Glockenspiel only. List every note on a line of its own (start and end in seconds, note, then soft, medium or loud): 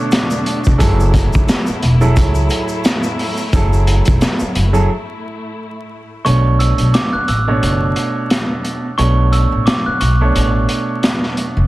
0.00 0.27 C#6 medium
6.25 6.56 C#6 medium
6.59 6.90 E6 medium
6.94 7.11 D6 medium
7.13 7.26 F#6 medium
7.28 8.26 E6 medium
8.98 9.29 C#6 loud
9.32 9.63 E6 medium
9.66 9.83 D6 medium
9.86 9.99 F#6 medium
10.00 11.18 C#6 medium